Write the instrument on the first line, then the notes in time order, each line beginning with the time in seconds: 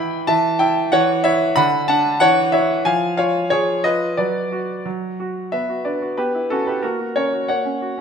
grand piano
Already playing: E3 E4 G5 B5
0.27 E3 E5 A5
0.59 E4 E5 G5
0.92 E3 C#5 F#5
1.24 E4 C#5 E5
1.56 D3 F#5 B5
1.88 D4 F#5 A5
2.20 E3 C#5 F#5
2.52 E4 C#5 E5
2.85 F3 F5 G#5
3.17 F4 C#5 F5
3.50 F3 G#4 C#5
3.84 F4 B4 D#5
4.17 F#3 B4 D5
4.52 F#4
4.85 F#3
5.20 F#4
5.52 B3 B4 E5
5.69 F#4
5.85 D4 B4 D5
6.02 F#4
6.17 B3 G4 B4
6.35 E4
6.50 C#4 F#4 A4
6.67 E4 G4 B4
6.82 A#3 F#4 A#4
7.00 F#4
7.16 C#4 A#4 C#5
7.33 F#4
7.48 A#3 C#5 F#5
7.65 C#4
7.82 F#4
7.98 C#4